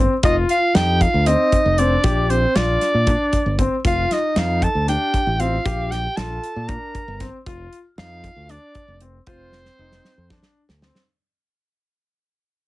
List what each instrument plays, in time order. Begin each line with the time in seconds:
Already playing: grand piano C4
0.23 fingered electric bass F1, alto saxophone D#4, grand piano F4, soprano saxophone D#5, kick, closed hi-hat
0.49 alto saxophone F4, soprano saxophone F5, closed hi-hat
0.75 fingered electric bass F2, grand piano D#4, alto saxophone G4, soprano saxophone G5, snare, closed hi-hat
1.01 alto saxophone F4, soprano saxophone F5, kick, closed hi-hat
1.14 fingered electric bass D2
1.26 grand piano C4, alto saxophone D#4, soprano saxophone D#5, closed hi-hat
1.52 kick, closed hi-hat
1.66 fingered electric bass F1
1.78 grand piano C4, alto saxophone D4, soprano saxophone D5, closed hi-hat
2.04 fingered electric bass A#1, grand piano G4, kick, closed hi-hat
2.30 alto saxophone C4, soprano saxophone C5, closed hi-hat
2.55 fingered electric bass A#1, alto saxophone D4, grand piano F4, soprano saxophone D5, snare, closed hi-hat
2.81 snare, closed hi-hat
2.94 fingered electric bass A#2
3.07 grand piano D4, kick, closed hi-hat
3.33 kick, closed hi-hat
3.46 fingered electric bass G1
3.59 grand piano C4, kick, closed hi-hat
3.85 fingered electric bass F1, grand piano F4, alto saxophone F4, soprano saxophone F5, kick, closed hi-hat
4.11 alto saxophone D#4, soprano saxophone D#5, snare, closed hi-hat
4.36 fingered electric bass F2, grand piano D#4, alto saxophone F4, soprano saxophone F5, snare, closed hi-hat
4.62 alto saxophone A4, soprano saxophone A5, kick, closed hi-hat
4.75 fingered electric bass D2
4.88 grand piano D4, alto saxophone G4, soprano saxophone G5, closed hi-hat
5.14 kick, closed hi-hat
5.27 fingered electric bass A1
5.40 grand piano C4, alto saxophone F4, soprano saxophone F5, closed hi-hat
5.66 fingered electric bass A#1, grand piano G4, kick, closed hi-hat
5.91 alto saxophone G4, soprano saxophone G5, snare, closed hi-hat
6.17 fingered electric bass A#1, grand piano F4, alto saxophone A4, soprano saxophone A5, snare, closed hi-hat
6.44 closed hi-hat
6.56 fingered electric bass A#2
6.68 grand piano D4, alto saxophone A#4, soprano saxophone A#5, kick, closed hi-hat
6.95 kick, closed hi-hat
7.08 fingered electric bass G1
7.20 grand piano C4, kick, snare, closed hi-hat
7.46 fingered electric bass F1, grand piano F4, kick, closed hi-hat
7.73 closed hi-hat
7.98 fingered electric bass F2, grand piano D#4, alto saxophone F4, soprano saxophone F5, snare, closed hi-hat
8.24 kick, closed hi-hat
8.36 fingered electric bass D2
8.49 alto saxophone D4, grand piano D4, soprano saxophone D5, closed hi-hat
8.75 kick, closed hi-hat
8.88 fingered electric bass F1
9.01 grand piano C4, closed hi-hat
9.27 fingered electric bass F1, alto saxophone C4, grand piano F4, soprano saxophone C5, kick, closed hi-hat
9.52 snare
9.65 snare
9.79 fingered electric bass F1, grand piano D#4
9.92 snare
10.05 snare
10.18 fingered electric bass F2
10.30 grand piano D4, kick, snare
10.43 snare
10.69 fingered electric bass D2, snare
10.82 grand piano C4, snare
10.95 snare